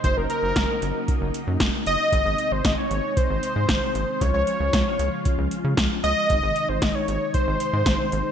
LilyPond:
<<
  \new Staff \with { instrumentName = "Analog synth lead" } { \time 4/4 \key aes \mixolydian \tempo 4 = 115 c''16 bes'16 bes'2 r4 ees''8~ | ees''8. c''16 ees''16 des''8. c''2 | des''16 des''16 des''2 r4 ees''8~ | ees''8. c''16 ees''16 des''8. c''2 | }
  \new Staff \with { instrumentName = "String machine" } { \clef bass \time 4/4 \key aes \mixolydian << { <des ges ees'>1 | <c ees ees'>1 | <des f f'>1 | <c ees ees'>1 | } \\ { bes1 | aes1~ | aes1~ | aes1 | } >> }
  \new Staff \with { instrumentName = "Analog synth bass" } { \clef bass \time 4/4 \key aes \mixolydian ges,,16 ges,,16 r16 ges,,16 ges,,16 r16 ges,,16 r8 ges,,16 r16 ges,16 ges,,16 r16 ges,,16 r16 | aes,,16 aes,,16 r16 aes,,16 aes,,16 r16 aes,,16 r8 aes,,16 r16 aes,16 aes,,16 r16 aes,,16 r16 | des,16 des,16 r16 des,16 des,16 r16 des,16 r8 des,16 r16 des16 des,16 r16 des,16 r16 | aes,,16 aes,,16 r16 aes,,16 aes,,16 r16 aes,,16 r8 aes,,16 r16 aes,16 aes,,16 r16 aes,,16 r16 | }
  \new DrumStaff \with { instrumentName = "Drums" } \drummode { \time 4/4 <hh bd>8 hh8 <hh bd sn>8 hh8 <hh bd>8 hh8 <hh bd sn>8 hh8 | <hh bd>8 hh8 <hh bd sn>8 hh8 <hh bd>8 hh8 <hh bd sn>8 hh8 | <hh bd>8 hh8 <hh bd sn>8 hh8 <hh bd>8 hh8 <hh bd sn>8 hh8 | <hh bd>8 hh8 <hh bd sn>8 hh8 <hh bd>8 hh8 <hh bd sn>8 hh8 | }
>>